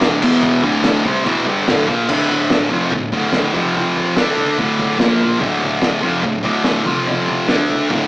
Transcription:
Already playing: distorted electric guitar D2 A2 D3
0.01 snare, crash
0.22 distorted electric guitar E2 B2 E3, kick, crash
0.43 kick, crash
0.63 distorted electric guitar D2 A2 D3, kick
0.84 snare, crash
1.05 distorted electric guitar C3 G3 C4, kick
1.25 distorted electric guitar E2 B2 E3, kick, crash
1.46 distorted electric guitar G2 D3 G3
1.68 distorted electric guitar D2 A2 D3, snare, crash
1.88 distorted electric guitar A#2 F3 A#3, kick
2.09 distorted electric guitar D2 A2 D3, kick, floor tom, crash
2.30 floor tom
2.50 snare, floor tom
2.70 distorted electric guitar F2 C3 F3, floor tom
2.91 distorted electric guitar D2 A2, kick, floor tom
3.12 distorted electric guitar D2 A2 D3, kick, floor tom
3.33 snare, floor tom
3.54 distorted electric guitar F2 C3 F3, kick, floor tom
3.74 floor tom
3.96 kick, floor tom
4.17 distorted electric guitar D3 A3 D4, snare, floor tom
4.37 floor tom
4.58 distorted electric guitar D2 A2 D3, kick, floor tom
4.79 kick, floor tom
4.98 distorted electric guitar A#2 F3 A#3, snare, floor tom
5.20 floor tom
5.39 distorted electric guitar D2 A2 D3, kick, floor tom
5.61 floor tom
5.82 snare, floor tom
6.01 distorted electric guitar F2 C3 F3, floor tom
6.23 distorted electric guitar D2 A2, kick, floor tom
6.43 distorted electric guitar D2 A2 D3, kick, floor tom
6.64 snare, floor tom
6.84 distorted electric guitar F2 C3 F3, kick, floor tom
7.07 floor tom
7.28 kick, floor tom
7.47 distorted electric guitar D3 A3 D4, snare, floor tom
7.70 floor tom
7.89 distorted electric guitar D2 A2 D3, kick, floor tom

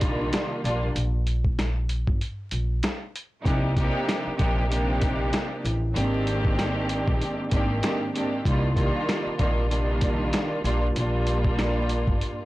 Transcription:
Already playing: upright bass A#1, string section C2 D#3 G3 A#3 D4 F4
0.01 kick, closed hi-hat
0.33 snare, closed hi-hat
0.64 upright bass A#1, string section A#2 G3 A#3 D4 F4, closed hi-hat
0.95 upright bass A#1, closed hi-hat
1.27 closed hi-hat
1.45 kick
1.59 snare, closed hi-hat
1.89 closed hi-hat
2.07 upright bass G1, kick
2.21 closed hi-hat
2.51 upright bass A#1, closed hi-hat
2.83 snare, closed hi-hat
3.16 closed hi-hat
3.44 upright bass C2, string section C3 F3 A#3 D4 D#4 G4, kick, closed hi-hat
3.77 string section C3 F3 A#3 D4 D#4 G4, kick, closed hi-hat
4.09 snare, closed hi-hat
4.26 muted upright bass stroke
4.38 upright bass A#1, string section C3 F3 A#3 D4 D#4 G4, kick, closed hi-hat
4.69 string section C3 F3 A#3 D4 D#4 G4, closed hi-hat
5.01 kick, closed hi-hat
5.33 snare, closed hi-hat
5.65 upright bass A1, closed hi-hat
5.95 upright bass G#1, string section G#2 D#3 A#3 C4 D4 G4, closed hi-hat
6.27 closed hi-hat
6.45 kick
6.59 snare, closed hi-hat
6.89 closed hi-hat
7.08 upright bass A#1, kick
7.21 closed hi-hat
7.51 upright bass G#1, string section G#2 D#3 A#3 C4 D4 G4, kick, closed hi-hat
7.82 string section G#2 D#3 A#3 C4 D4 G4, snare, closed hi-hat
8.14 string section G#2 D#3 A#3 C4 D4 G4, closed hi-hat
8.45 string section C2 D#3 G3 A#3 D4 F4, upright bass C2, kick, closed hi-hat
8.75 string section C2 D#3 G3 A#3 D4 F4, kick, closed hi-hat
9.09 snare, closed hi-hat
9.26 muted upright bass stroke
9.39 upright bass A#1, string section C2 D#3 G3 A#3 D4 F4, kick, closed hi-hat
9.69 string section C2 D#3 G3 A#3 D4 F4, closed hi-hat
10.01 kick, closed hi-hat
10.33 snare, closed hi-hat
10.64 upright bass A#1, string section A#2 G3 A#3 D4 F4, closed hi-hat
10.96 upright bass A#1, string section A#2 G3 A#3 D4 F4, closed hi-hat
11.27 closed hi-hat
11.45 kick
11.59 snare, closed hi-hat
11.89 closed hi-hat
12.07 upright bass G1, kick
12.21 closed hi-hat

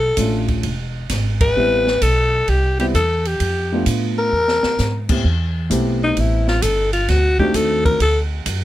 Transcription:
Already playing: upright bass B1, alto saxophone A4
0.17 upright bass A1, upright piano A3 C#4 D4 F4, kick, hi-hat pedal, ride
0.48 kick, ride
0.63 upright bass E1, kick, ride
1.09 upright bass G#1, kick, snare, hi-hat pedal, ride
1.41 alto saxophone B4, kick, ride
1.56 upright bass A1, upright piano G3 B3 C4 E4
1.87 snare
2.02 upright bass B1, alto saxophone A4, kick, hi-hat pedal, ride
2.48 upright bass C2, alto saxophone G4, kick, ride
2.79 upright piano G3 B3 C4 E4, alto saxophone G4, ride
2.94 upright bass E2, alto saxophone A4, kick, hi-hat pedal, ride
3.25 alto saxophone G4, ride
3.40 upright bass F2, kick, ride
3.72 upright piano A3 B3 D4 F4
3.86 upright bass A2, kick, hi-hat pedal, ride
4.18 alto saxophone A#4
4.32 upright bass E2
4.48 snare
4.63 muted upright bass stroke, snare
4.78 upright bass G#2, snare, hi-hat pedal
5.08 upright piano A2 B3 C4 E4 G4, kick, crash
5.24 upright bass E2, kick
5.70 upright bass B1, upright piano A3 B3 C4 E4 G4, kick, hi-hat pedal, ride
6.04 alto saxophone D#4
6.17 upright bass A1, alto saxophone E4, kick, ride
6.47 alto saxophone F4, snare
6.62 upright bass G1, alto saxophone A4, kick, hi-hat pedal, ride
6.93 alto saxophone F4, ride
7.08 upright bass D2, alto saxophone F#4, kick, snare, ride
7.39 upright piano A3 C4 D4 D#4 F#4, alto saxophone G4, kick
7.54 upright bass D#2, alto saxophone A4, kick, hi-hat pedal, ride
7.85 alto saxophone A#4, kick, ride
8.00 upright bass D2, alto saxophone A4, kick, ride
8.46 upright bass F#2, kick, hi-hat pedal, ride

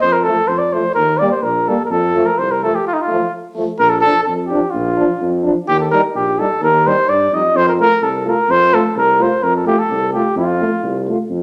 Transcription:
0.01 tuba F2, cornet C5
0.12 cornet A#4
0.24 euphonium F3, french horn A3, cornet A4
0.48 tuba F2, cornet C5
0.59 cornet D5
0.73 euphonium F3, french horn A3, cornet C5
0.94 tuba D#2, cornet A#4
1.19 euphonium G3, french horn A#3, cornet D5
1.31 cornet C5
1.43 tuba A#1, cornet A#4
1.67 euphonium G3, french horn A#3, cornet A4
1.85 cornet A#4
1.90 tuba F2, cornet A4
2.16 euphonium F3, french horn A3
2.26 cornet A#4
2.38 tuba C2, cornet C5
2.51 cornet A#4
2.63 euphonium F3, french horn A3, cornet A4
2.75 cornet G4
2.87 cornet F4
2.93 cornet D#4
3.02 cornet F4
3.08 euphonium F3, french horn A3
3.55 euphonium F3, french horn A3
3.79 tuba A#1, cornet A#4
3.90 cornet A4
4.01 french horn D4, cornet A4
4.06 euphonium F3
4.24 tuba F2, cornet A4
4.47 french horn D4, cornet G4
4.52 euphonium F3
4.70 cornet F4
4.75 tuba A#1
4.97 euphonium F3, french horn D4
5.21 tuba F2
5.44 euphonium F3, french horn D4
5.68 tuba D#2, cornet G4
5.80 cornet A4
5.91 euphonium G3, french horn D#4, cornet A#4
6.14 tuba A#1, cornet G4
6.39 euphonium G3, french horn D#4, cornet A4
6.61 tuba D#2, cornet A#4
6.86 euphonium G3, french horn D#4, cornet C5
7.09 tuba G2, cornet D5
7.32 tuba F2, euphonium G3, french horn D#4, cornet D#5
7.54 tuba F2, cornet C5
7.69 cornet A#4
7.79 euphonium A3, french horn F4, cornet A#4
8.01 tuba C2, cornet A4
8.26 euphonium A3, french horn F4, cornet A#4
8.49 tuba F2, cornet C5
8.72 euphonium A3, french horn F4, cornet A4
8.96 tuba C2, cornet A#4
9.19 euphonium A3, french horn F4, cornet C5
9.43 tuba F2, cornet A#4
9.56 cornet A4
9.66 euphonium A3, french horn F4, cornet G4
9.79 cornet A4
9.90 tuba C2
10.13 euphonium A3, french horn F4, cornet G4
10.36 tuba F2, cornet F4
10.61 euphonium A3, french horn F4
10.83 tuba C2
11.09 euphonium A3, french horn F4
11.30 tuba F2

